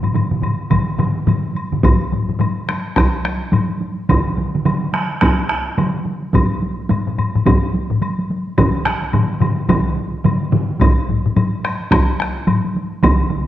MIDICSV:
0, 0, Header, 1, 3, 480
1, 0, Start_track
1, 0, Tempo, 562852
1, 1566, Time_signature, 4, 2, 24, 8
1, 5880, Tempo, 557621
1, 11542, End_track
2, 0, Start_track
2, 0, Title_t, "Taiko and cinematic ensemble drums"
2, 24, Note_on_c, 9, 47, 60
2, 25, Note_on_c, 9, 45, 65
2, 29, Note_on_c, 9, 48, 44
2, 110, Note_off_c, 9, 47, 0
2, 111, Note_off_c, 9, 45, 0
2, 114, Note_off_c, 9, 48, 0
2, 123, Note_on_c, 9, 47, 67
2, 125, Note_on_c, 9, 45, 66
2, 127, Note_on_c, 9, 48, 62
2, 208, Note_off_c, 9, 47, 0
2, 210, Note_off_c, 9, 45, 0
2, 213, Note_off_c, 9, 48, 0
2, 267, Note_on_c, 9, 45, 60
2, 267, Note_on_c, 9, 47, 64
2, 268, Note_on_c, 9, 48, 20
2, 352, Note_off_c, 9, 45, 0
2, 352, Note_off_c, 9, 47, 0
2, 353, Note_off_c, 9, 48, 0
2, 359, Note_on_c, 9, 47, 63
2, 361, Note_on_c, 9, 45, 63
2, 363, Note_on_c, 9, 48, 48
2, 444, Note_off_c, 9, 47, 0
2, 446, Note_off_c, 9, 45, 0
2, 448, Note_off_c, 9, 48, 0
2, 511, Note_on_c, 9, 48, 19
2, 596, Note_off_c, 9, 48, 0
2, 602, Note_on_c, 9, 47, 90
2, 604, Note_on_c, 9, 41, 52
2, 604, Note_on_c, 9, 45, 85
2, 609, Note_on_c, 9, 48, 61
2, 687, Note_off_c, 9, 47, 0
2, 689, Note_off_c, 9, 41, 0
2, 689, Note_off_c, 9, 45, 0
2, 694, Note_off_c, 9, 48, 0
2, 753, Note_on_c, 9, 48, 20
2, 838, Note_off_c, 9, 48, 0
2, 839, Note_on_c, 9, 45, 85
2, 844, Note_on_c, 9, 47, 94
2, 846, Note_on_c, 9, 48, 49
2, 925, Note_off_c, 9, 45, 0
2, 929, Note_off_c, 9, 47, 0
2, 932, Note_off_c, 9, 48, 0
2, 990, Note_on_c, 9, 48, 19
2, 1075, Note_off_c, 9, 48, 0
2, 1082, Note_on_c, 9, 45, 96
2, 1082, Note_on_c, 9, 48, 60
2, 1083, Note_on_c, 9, 47, 82
2, 1167, Note_off_c, 9, 48, 0
2, 1168, Note_off_c, 9, 45, 0
2, 1169, Note_off_c, 9, 47, 0
2, 1229, Note_on_c, 9, 48, 18
2, 1314, Note_off_c, 9, 48, 0
2, 1322, Note_on_c, 9, 48, 48
2, 1408, Note_off_c, 9, 48, 0
2, 1471, Note_on_c, 9, 47, 64
2, 1472, Note_on_c, 9, 45, 63
2, 1556, Note_off_c, 9, 47, 0
2, 1558, Note_off_c, 9, 45, 0
2, 1566, Note_on_c, 9, 45, 95
2, 1568, Note_on_c, 9, 41, 93
2, 1572, Note_on_c, 9, 48, 70
2, 1651, Note_off_c, 9, 45, 0
2, 1653, Note_off_c, 9, 41, 0
2, 1657, Note_off_c, 9, 48, 0
2, 1720, Note_on_c, 9, 48, 24
2, 1806, Note_off_c, 9, 48, 0
2, 1811, Note_on_c, 9, 45, 70
2, 1816, Note_on_c, 9, 48, 58
2, 1896, Note_off_c, 9, 45, 0
2, 1901, Note_off_c, 9, 48, 0
2, 1952, Note_on_c, 9, 45, 68
2, 1957, Note_on_c, 9, 48, 22
2, 2037, Note_off_c, 9, 45, 0
2, 2042, Note_off_c, 9, 48, 0
2, 2045, Note_on_c, 9, 45, 97
2, 2050, Note_on_c, 9, 48, 78
2, 2130, Note_off_c, 9, 45, 0
2, 2135, Note_off_c, 9, 48, 0
2, 2201, Note_on_c, 9, 48, 24
2, 2286, Note_off_c, 9, 48, 0
2, 2291, Note_on_c, 9, 37, 74
2, 2294, Note_on_c, 9, 48, 57
2, 2376, Note_off_c, 9, 37, 0
2, 2379, Note_off_c, 9, 48, 0
2, 2439, Note_on_c, 9, 48, 22
2, 2525, Note_off_c, 9, 48, 0
2, 2526, Note_on_c, 9, 37, 77
2, 2527, Note_on_c, 9, 48, 70
2, 2528, Note_on_c, 9, 41, 99
2, 2611, Note_off_c, 9, 37, 0
2, 2612, Note_off_c, 9, 48, 0
2, 2614, Note_off_c, 9, 41, 0
2, 2667, Note_on_c, 9, 48, 23
2, 2752, Note_off_c, 9, 48, 0
2, 2767, Note_on_c, 9, 48, 59
2, 2772, Note_on_c, 9, 37, 75
2, 2853, Note_off_c, 9, 48, 0
2, 2857, Note_off_c, 9, 37, 0
2, 2911, Note_on_c, 9, 48, 22
2, 2996, Note_off_c, 9, 48, 0
2, 3002, Note_on_c, 9, 48, 70
2, 3011, Note_on_c, 9, 45, 103
2, 3088, Note_off_c, 9, 48, 0
2, 3096, Note_off_c, 9, 45, 0
2, 3147, Note_on_c, 9, 48, 43
2, 3232, Note_off_c, 9, 48, 0
2, 3246, Note_on_c, 9, 48, 52
2, 3331, Note_off_c, 9, 48, 0
2, 3391, Note_on_c, 9, 48, 22
2, 3477, Note_off_c, 9, 48, 0
2, 3490, Note_on_c, 9, 47, 101
2, 3490, Note_on_c, 9, 48, 64
2, 3495, Note_on_c, 9, 41, 99
2, 3575, Note_off_c, 9, 47, 0
2, 3575, Note_off_c, 9, 48, 0
2, 3581, Note_off_c, 9, 41, 0
2, 3633, Note_on_c, 9, 48, 21
2, 3718, Note_off_c, 9, 48, 0
2, 3724, Note_on_c, 9, 48, 54
2, 3731, Note_on_c, 9, 47, 70
2, 3809, Note_off_c, 9, 48, 0
2, 3816, Note_off_c, 9, 47, 0
2, 3872, Note_on_c, 9, 48, 22
2, 3880, Note_on_c, 9, 47, 72
2, 3957, Note_off_c, 9, 48, 0
2, 3965, Note_off_c, 9, 47, 0
2, 3967, Note_on_c, 9, 48, 73
2, 3970, Note_on_c, 9, 47, 97
2, 4053, Note_off_c, 9, 48, 0
2, 4055, Note_off_c, 9, 47, 0
2, 4109, Note_on_c, 9, 48, 21
2, 4194, Note_off_c, 9, 48, 0
2, 4202, Note_on_c, 9, 48, 59
2, 4210, Note_on_c, 9, 37, 79
2, 4288, Note_off_c, 9, 48, 0
2, 4296, Note_off_c, 9, 37, 0
2, 4351, Note_on_c, 9, 48, 22
2, 4437, Note_off_c, 9, 48, 0
2, 4443, Note_on_c, 9, 37, 81
2, 4447, Note_on_c, 9, 48, 74
2, 4451, Note_on_c, 9, 41, 96
2, 4528, Note_off_c, 9, 37, 0
2, 4532, Note_off_c, 9, 48, 0
2, 4536, Note_off_c, 9, 41, 0
2, 4597, Note_on_c, 9, 48, 25
2, 4683, Note_off_c, 9, 48, 0
2, 4684, Note_on_c, 9, 37, 73
2, 4769, Note_off_c, 9, 37, 0
2, 4831, Note_on_c, 9, 48, 24
2, 4916, Note_off_c, 9, 48, 0
2, 4928, Note_on_c, 9, 48, 73
2, 4929, Note_on_c, 9, 47, 97
2, 5013, Note_off_c, 9, 48, 0
2, 5014, Note_off_c, 9, 47, 0
2, 5068, Note_on_c, 9, 48, 52
2, 5153, Note_off_c, 9, 48, 0
2, 5165, Note_on_c, 9, 48, 59
2, 5250, Note_off_c, 9, 48, 0
2, 5310, Note_on_c, 9, 48, 24
2, 5396, Note_off_c, 9, 48, 0
2, 5405, Note_on_c, 9, 48, 81
2, 5407, Note_on_c, 9, 45, 96
2, 5408, Note_on_c, 9, 41, 94
2, 5490, Note_off_c, 9, 48, 0
2, 5492, Note_off_c, 9, 45, 0
2, 5493, Note_off_c, 9, 41, 0
2, 5551, Note_on_c, 9, 48, 24
2, 5637, Note_off_c, 9, 48, 0
2, 5642, Note_on_c, 9, 48, 64
2, 5727, Note_off_c, 9, 48, 0
2, 5791, Note_on_c, 9, 48, 23
2, 5876, Note_off_c, 9, 48, 0
2, 5880, Note_on_c, 9, 48, 80
2, 5890, Note_on_c, 9, 45, 75
2, 5967, Note_off_c, 9, 48, 0
2, 5976, Note_off_c, 9, 45, 0
2, 6026, Note_on_c, 9, 48, 24
2, 6032, Note_on_c, 9, 45, 68
2, 6113, Note_off_c, 9, 48, 0
2, 6118, Note_off_c, 9, 45, 0
2, 6128, Note_on_c, 9, 45, 70
2, 6214, Note_off_c, 9, 45, 0
2, 6270, Note_on_c, 9, 48, 25
2, 6276, Note_on_c, 9, 45, 72
2, 6356, Note_off_c, 9, 48, 0
2, 6362, Note_off_c, 9, 45, 0
2, 6362, Note_on_c, 9, 48, 76
2, 6368, Note_on_c, 9, 41, 99
2, 6374, Note_on_c, 9, 45, 99
2, 6448, Note_off_c, 9, 48, 0
2, 6454, Note_off_c, 9, 41, 0
2, 6460, Note_off_c, 9, 45, 0
2, 6509, Note_on_c, 9, 48, 23
2, 6595, Note_off_c, 9, 48, 0
2, 6603, Note_on_c, 9, 48, 60
2, 6689, Note_off_c, 9, 48, 0
2, 6747, Note_on_c, 9, 48, 22
2, 6750, Note_on_c, 9, 45, 72
2, 6834, Note_off_c, 9, 48, 0
2, 6836, Note_off_c, 9, 45, 0
2, 6844, Note_on_c, 9, 48, 72
2, 6930, Note_off_c, 9, 48, 0
2, 6989, Note_on_c, 9, 48, 51
2, 7075, Note_off_c, 9, 48, 0
2, 7091, Note_on_c, 9, 48, 57
2, 7177, Note_off_c, 9, 48, 0
2, 7238, Note_on_c, 9, 48, 22
2, 7324, Note_off_c, 9, 48, 0
2, 7328, Note_on_c, 9, 47, 98
2, 7331, Note_on_c, 9, 48, 70
2, 7334, Note_on_c, 9, 41, 104
2, 7334, Note_on_c, 9, 45, 98
2, 7414, Note_off_c, 9, 47, 0
2, 7417, Note_off_c, 9, 48, 0
2, 7420, Note_off_c, 9, 41, 0
2, 7420, Note_off_c, 9, 45, 0
2, 7471, Note_on_c, 9, 48, 22
2, 7557, Note_off_c, 9, 48, 0
2, 7566, Note_on_c, 9, 37, 73
2, 7567, Note_on_c, 9, 48, 55
2, 7569, Note_off_c, 9, 37, 0
2, 7569, Note_on_c, 9, 37, 72
2, 7653, Note_off_c, 9, 48, 0
2, 7655, Note_off_c, 9, 37, 0
2, 7712, Note_on_c, 9, 48, 22
2, 7798, Note_off_c, 9, 48, 0
2, 7804, Note_on_c, 9, 48, 71
2, 7810, Note_on_c, 9, 45, 102
2, 7813, Note_on_c, 9, 47, 97
2, 7890, Note_off_c, 9, 48, 0
2, 7896, Note_off_c, 9, 45, 0
2, 7899, Note_off_c, 9, 47, 0
2, 7955, Note_on_c, 9, 48, 24
2, 8039, Note_on_c, 9, 45, 90
2, 8041, Note_off_c, 9, 48, 0
2, 8049, Note_on_c, 9, 47, 95
2, 8050, Note_on_c, 9, 48, 56
2, 8125, Note_off_c, 9, 45, 0
2, 8135, Note_off_c, 9, 47, 0
2, 8137, Note_off_c, 9, 48, 0
2, 8191, Note_on_c, 9, 48, 24
2, 8277, Note_off_c, 9, 48, 0
2, 8283, Note_on_c, 9, 45, 97
2, 8285, Note_on_c, 9, 48, 69
2, 8287, Note_on_c, 9, 47, 103
2, 8290, Note_on_c, 9, 41, 96
2, 8369, Note_off_c, 9, 45, 0
2, 8371, Note_off_c, 9, 48, 0
2, 8374, Note_off_c, 9, 47, 0
2, 8376, Note_off_c, 9, 41, 0
2, 8430, Note_on_c, 9, 48, 21
2, 8516, Note_off_c, 9, 48, 0
2, 8523, Note_on_c, 9, 48, 54
2, 8609, Note_off_c, 9, 48, 0
2, 8664, Note_on_c, 9, 48, 22
2, 8750, Note_off_c, 9, 48, 0
2, 8761, Note_on_c, 9, 47, 93
2, 8762, Note_on_c, 9, 48, 68
2, 8763, Note_on_c, 9, 45, 102
2, 8847, Note_off_c, 9, 47, 0
2, 8848, Note_off_c, 9, 48, 0
2, 8849, Note_off_c, 9, 45, 0
2, 8910, Note_on_c, 9, 48, 44
2, 8996, Note_off_c, 9, 48, 0
2, 9000, Note_on_c, 9, 47, 94
2, 9003, Note_on_c, 9, 45, 99
2, 9010, Note_on_c, 9, 48, 56
2, 9086, Note_off_c, 9, 47, 0
2, 9089, Note_off_c, 9, 45, 0
2, 9096, Note_off_c, 9, 48, 0
2, 9154, Note_on_c, 9, 48, 22
2, 9240, Note_off_c, 9, 48, 0
2, 9240, Note_on_c, 9, 45, 99
2, 9248, Note_on_c, 9, 41, 107
2, 9252, Note_on_c, 9, 48, 71
2, 9326, Note_off_c, 9, 45, 0
2, 9334, Note_off_c, 9, 41, 0
2, 9338, Note_off_c, 9, 48, 0
2, 9393, Note_on_c, 9, 48, 21
2, 9479, Note_off_c, 9, 48, 0
2, 9486, Note_on_c, 9, 45, 68
2, 9489, Note_on_c, 9, 48, 56
2, 9572, Note_off_c, 9, 45, 0
2, 9575, Note_off_c, 9, 48, 0
2, 9632, Note_on_c, 9, 45, 74
2, 9636, Note_on_c, 9, 48, 21
2, 9718, Note_off_c, 9, 45, 0
2, 9722, Note_off_c, 9, 48, 0
2, 9723, Note_on_c, 9, 48, 70
2, 9726, Note_on_c, 9, 45, 101
2, 9809, Note_off_c, 9, 48, 0
2, 9812, Note_off_c, 9, 45, 0
2, 9872, Note_on_c, 9, 48, 23
2, 9958, Note_off_c, 9, 48, 0
2, 9969, Note_on_c, 9, 37, 72
2, 9971, Note_on_c, 9, 48, 54
2, 10055, Note_off_c, 9, 37, 0
2, 10057, Note_off_c, 9, 48, 0
2, 10111, Note_on_c, 9, 48, 24
2, 10197, Note_off_c, 9, 48, 0
2, 10205, Note_on_c, 9, 41, 104
2, 10206, Note_on_c, 9, 37, 77
2, 10207, Note_on_c, 9, 48, 72
2, 10291, Note_off_c, 9, 41, 0
2, 10292, Note_off_c, 9, 37, 0
2, 10293, Note_off_c, 9, 48, 0
2, 10354, Note_on_c, 9, 48, 24
2, 10440, Note_off_c, 9, 48, 0
2, 10446, Note_on_c, 9, 37, 76
2, 10446, Note_on_c, 9, 48, 55
2, 10532, Note_off_c, 9, 37, 0
2, 10532, Note_off_c, 9, 48, 0
2, 10591, Note_on_c, 9, 48, 22
2, 10677, Note_off_c, 9, 48, 0
2, 10684, Note_on_c, 9, 45, 100
2, 10686, Note_on_c, 9, 48, 68
2, 10771, Note_off_c, 9, 45, 0
2, 10772, Note_off_c, 9, 48, 0
2, 10829, Note_on_c, 9, 48, 48
2, 10915, Note_off_c, 9, 48, 0
2, 10921, Note_on_c, 9, 48, 58
2, 11007, Note_off_c, 9, 48, 0
2, 11074, Note_on_c, 9, 48, 22
2, 11159, Note_on_c, 9, 47, 101
2, 11160, Note_off_c, 9, 48, 0
2, 11160, Note_on_c, 9, 48, 71
2, 11168, Note_on_c, 9, 41, 104
2, 11245, Note_off_c, 9, 47, 0
2, 11246, Note_off_c, 9, 48, 0
2, 11254, Note_off_c, 9, 41, 0
2, 11305, Note_on_c, 9, 48, 24
2, 11391, Note_off_c, 9, 48, 0
2, 11395, Note_on_c, 9, 47, 66
2, 11399, Note_on_c, 9, 48, 56
2, 11481, Note_off_c, 9, 47, 0
2, 11485, Note_off_c, 9, 48, 0
2, 11542, End_track
3, 0, Start_track
3, 0, Title_t, "Drums"
3, 34, Note_on_c, 9, 76, 38
3, 119, Note_off_c, 9, 76, 0
3, 134, Note_on_c, 9, 76, 39
3, 219, Note_off_c, 9, 76, 0
3, 370, Note_on_c, 9, 76, 39
3, 455, Note_off_c, 9, 76, 0
3, 603, Note_on_c, 9, 76, 51
3, 688, Note_off_c, 9, 76, 0
3, 849, Note_on_c, 9, 76, 40
3, 935, Note_off_c, 9, 76, 0
3, 1094, Note_on_c, 9, 76, 41
3, 1180, Note_off_c, 9, 76, 0
3, 1334, Note_on_c, 9, 76, 41
3, 1419, Note_off_c, 9, 76, 0
3, 1574, Note_on_c, 9, 76, 58
3, 1660, Note_off_c, 9, 76, 0
3, 2054, Note_on_c, 9, 76, 41
3, 2139, Note_off_c, 9, 76, 0
3, 2293, Note_on_c, 9, 76, 39
3, 2379, Note_off_c, 9, 76, 0
3, 2535, Note_on_c, 9, 76, 55
3, 2620, Note_off_c, 9, 76, 0
3, 3012, Note_on_c, 9, 76, 43
3, 3097, Note_off_c, 9, 76, 0
3, 3493, Note_on_c, 9, 76, 57
3, 3578, Note_off_c, 9, 76, 0
3, 3974, Note_on_c, 9, 76, 44
3, 4060, Note_off_c, 9, 76, 0
3, 4215, Note_on_c, 9, 76, 40
3, 4300, Note_off_c, 9, 76, 0
3, 4452, Note_on_c, 9, 76, 55
3, 4537, Note_off_c, 9, 76, 0
3, 4931, Note_on_c, 9, 76, 43
3, 5016, Note_off_c, 9, 76, 0
3, 5413, Note_on_c, 9, 76, 54
3, 5499, Note_off_c, 9, 76, 0
3, 5889, Note_on_c, 9, 76, 43
3, 5975, Note_off_c, 9, 76, 0
3, 6131, Note_on_c, 9, 76, 42
3, 6217, Note_off_c, 9, 76, 0
3, 6371, Note_on_c, 9, 76, 58
3, 6457, Note_off_c, 9, 76, 0
3, 6851, Note_on_c, 9, 76, 46
3, 6937, Note_off_c, 9, 76, 0
3, 7329, Note_on_c, 9, 76, 61
3, 7415, Note_off_c, 9, 76, 0
3, 7805, Note_on_c, 9, 76, 46
3, 7891, Note_off_c, 9, 76, 0
3, 8050, Note_on_c, 9, 76, 44
3, 8136, Note_off_c, 9, 76, 0
3, 8287, Note_on_c, 9, 76, 55
3, 8373, Note_off_c, 9, 76, 0
3, 8771, Note_on_c, 9, 76, 42
3, 8858, Note_off_c, 9, 76, 0
3, 9249, Note_on_c, 9, 76, 59
3, 9335, Note_off_c, 9, 76, 0
3, 9726, Note_on_c, 9, 76, 46
3, 9812, Note_off_c, 9, 76, 0
3, 9967, Note_on_c, 9, 76, 46
3, 10053, Note_off_c, 9, 76, 0
3, 10205, Note_on_c, 9, 76, 62
3, 10292, Note_off_c, 9, 76, 0
3, 10684, Note_on_c, 9, 76, 49
3, 10770, Note_off_c, 9, 76, 0
3, 11166, Note_on_c, 9, 76, 69
3, 11252, Note_off_c, 9, 76, 0
3, 11542, End_track
0, 0, End_of_file